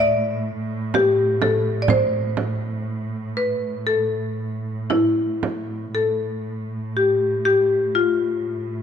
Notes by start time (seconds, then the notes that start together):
Already playing: A2
0.00 D5
0.94 G4, frame drum
1.42 A4, frame drum
1.82 D5
1.88 C5, frame drum
2.37 frame drum
3.37 B4
3.87 A4
4.90 E4, frame drum
5.43 frame drum
5.95 A2 A4
6.97 G4
7.45 G4
7.95 F4